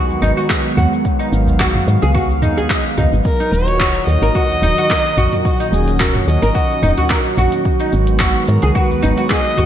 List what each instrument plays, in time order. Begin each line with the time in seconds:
Already playing: analog synth pad D#3 F#3 G#3 B3 F#4, oud F#4
0.09 udu, cabasa
0.22 fm bass G#1, oud D#4, udu, cabasa
0.37 oud F#4, cabasa
0.49 oud G#4, kick, clap, cabasa
0.65 cabasa
0.77 fm bass D#2, oud F#4, mid tom, cabasa
0.93 cabasa
1.05 analog synth pad F5, kick, cabasa
1.19 oud D#4, cabasa
1.32 fm bass G#1, cabasa
1.47 udu, cabasa
1.60 oud F#4, kick, clap, cabasa
1.75 mid tom, cabasa
1.88 fm bass G#2, cabasa
2.02 fm bass C#2, oud G#4, cabasa
2.14 oud F#4, kick, cabasa
2.31 cabasa
2.42 fm bass D#2, oud D#4, mid tom, cabasa
2.57 oud G#4, udu, cabasa
2.70 oud D#5, kick, clap, cabasa
2.86 cabasa
2.97 fm bass C#2, oud D#4, mid tom, udu, cabasa
3.13 fm bass G#1, cabasa
3.25 analog synth pad A#2 D#3 F#3 D#4 F#4, kamancheh A#4, kick, cabasa
3.40 oud D#4, closed hi-hat, cabasa
3.51 fm bass D#1, kamancheh C#5, cabasa
3.68 closed hi-hat, cabasa
3.80 oud F#4, kick, clap, cabasa
3.95 closed hi-hat, cabasa
4.07 fm bass D#2, kamancheh D#5, cabasa
4.22 fm bass G#1, oud A#4, closed hi-hat, cabasa
4.35 oud F#4, kick, cabasa
4.50 udu, cabasa
4.62 fm bass D#1, oud D#4, udu, cabasa
4.78 oud F#4, closed hi-hat, cabasa
4.90 oud A#4, kick, clap, cabasa
5.05 closed hi-hat, cabasa
5.17 fm bass A#1, oud F#4, mid tom, cabasa
5.33 closed hi-hat, mid tom, cabasa
5.45 analog synth pad C#4, kamancheh F#4, kick, cabasa
5.60 oud D#4, closed hi-hat, cabasa
5.72 fm bass D#1, kamancheh G#4, cabasa
5.88 closed hi-hat, cabasa
6.00 oud F#4, kamancheh A#4, kick, clap, cabasa
6.15 closed hi-hat, mid tom, cabasa
6.27 fm bass D#2, kamancheh D#5, cabasa
6.42 fm bass G#1, oud A#4, closed hi-hat, cabasa
6.55 oud F#4, kick, cabasa
6.71 cabasa
6.83 fm bass D#1, oud D#4, mid tom, cabasa
6.98 oud F#4, closed hi-hat, udu, cabasa
7.10 oud A#4, kick, clap, cabasa
7.25 closed hi-hat, cabasa
7.37 fm bass A#1, oud F#4, mid tom, cabasa
7.52 closed hi-hat, cabasa
7.65 analog synth pad G#3 B3, kick, cabasa
7.80 oud D#4, closed hi-hat, cabasa
7.92 fm bass G#1, cabasa
8.07 closed hi-hat, cabasa
8.19 oud F#4, kick, clap, cabasa
8.34 closed hi-hat, cabasa
8.47 fm bass G#2, kamancheh A#4, cabasa
8.62 fm bass C#2, oud G#4, closed hi-hat, cabasa
8.75 oud F#4, kamancheh B4, kick, cabasa
8.91 udu, cabasa
9.03 fm bass G#1, oud D#4, udu, cabasa
9.18 oud F#4, closed hi-hat, cabasa
9.30 oud G#4, kamancheh D#5, kick, clap, cabasa
9.45 closed hi-hat, cabasa
9.58 fm bass D#2, oud F#4, mid tom, cabasa